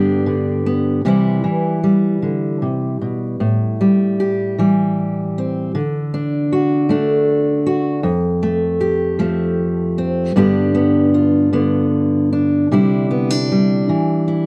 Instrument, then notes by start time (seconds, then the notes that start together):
steel-string acoustic guitar
Already playing: G2 D3 B3 D4 G4
0.26 D3
0.66 B3
1.05 C3 E3 G3 E4
1.44 E3
1.84 G3
2.22 D3
2.62 C3
3.01 B2
3.40 A2
3.81 G3
4.20 G4
4.58 E3 G3
5.38 C4
5.75 D3
6.14 D4
6.53 F#4
6.89 A3 D4
7.66 F#4
8.03 F2
8.43 A3
8.81 G4
9.19 F3 A3
9.98 C4
10.36 G2 D3 B3 D4 G4
10.75 B3
11.14 F4
11.53 D3 B3
12.33 D4
12.72 C3 G3 D4 E4
13.11 B3
13.30 D4
13.52 G3
13.89 E3
14.28 E4